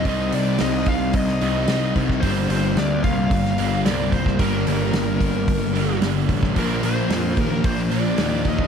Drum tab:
HH |o-o-o-o-o-o-o-o-|o-o-o-o-o-o-o-o-|o-o-o-o-o-o-o-o-|o-o-o-o-o-o-o-o-|
SD |----o----o--o--o|----o----o--o--o|----o-------o--o|----o-------o---|
BD |o-----o-o-----oo|o-----o-o-----oo|o-----o-o-----oo|o-----o-o-----oo|